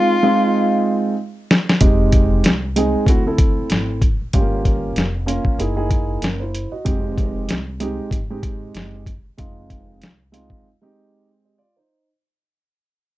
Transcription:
Already playing: grand piano G#3 C4 D#4 F4, tenor saxophone F4
0.23 grand piano G#3 C4 D#4 F4
1.51 snare
1.69 snare
1.81 upright bass F1, grand piano G#3 C4 D#4 G4, kick, closed hi-hat
2.12 kick, closed hi-hat
2.44 upright bass C2, snare, closed hi-hat
2.76 grand piano G#3 C4 D#4 G#4, closed hi-hat
2.94 muted upright bass stroke
3.06 upright bass D2, grand piano A3 C4 E4 F#4, kick, closed hi-hat
3.26 grand piano A3 C4 E4 A4
3.38 kick, closed hi-hat
3.58 muted upright bass stroke
3.70 upright bass G#1, snare, closed hi-hat
4.02 kick, closed hi-hat
4.21 muted upright bass stroke
4.33 upright bass G1, grand piano G#3 C#4 F4 G4, kick, closed hi-hat
4.40 grand piano A#3
4.65 kick, closed hi-hat
4.96 upright bass F1, snare, closed hi-hat
5.26 grand piano A#3 C#4 F4 A#4, closed hi-hat
5.45 kick
5.58 upright bass F#1, grand piano A#3 D#4 E4 G#4, closed hi-hat
5.76 grand piano A#3 D#4 E4 G#4
5.91 kick, closed hi-hat
6.22 upright bass F#1, grand piano C#4 A#4, snare, closed hi-hat
6.40 grand piano E4 C5
6.55 closed hi-hat
6.72 grand piano F#4 D#5, muted upright bass stroke
6.85 upright bass F1, grand piano G#3 C4 D#4 G4, kick, closed hi-hat
7.18 kick, closed hi-hat
7.49 upright bass C2, snare, closed hi-hat
7.80 grand piano G#3 C4 D#4 G4, closed hi-hat
7.99 muted upright bass stroke
8.11 upright bass G#1, kick, closed hi-hat
8.30 grand piano G#3 C4 D#4 G4
8.43 kick, closed hi-hat
8.75 upright bass F#1, snare, closed hi-hat
9.06 kick, closed hi-hat
9.25 muted upright bass stroke
9.38 upright bass F1, grand piano G#3 C4 D#4 F4, kick, closed hi-hat
9.70 kick, closed hi-hat
10.01 upright bass C2, snare, closed hi-hat
10.32 grand piano G#3 C4 D#4 F4, closed hi-hat
10.50 muted upright bass stroke, kick
10.82 grand piano G#3 C4 D#4 G4
11.45 grand piano G4 D#5
11.58 grand piano F4 D5
11.77 grand piano D#4 C5

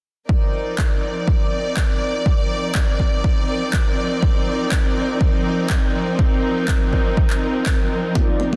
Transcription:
0.29 string section F3 C4 D#4 A#4 D5, kick
0.78 kick, clap
1.28 kick
1.77 kick, clap
2.26 kick
2.75 kick, clap
3.00 kick
3.24 kick
3.73 kick, clap
4.23 kick
4.72 kick, clap
5.21 kick
5.70 kick, clap
6.19 kick
6.68 kick, clap
6.93 kick
7.17 kick
7.30 clap
7.66 kick, clap
8.15 analog polysynth C4 D#4 F4 A#4 D5, kick, muted conga
8.40 muted conga
8.53 analog polysynth C4 D#4, high conga

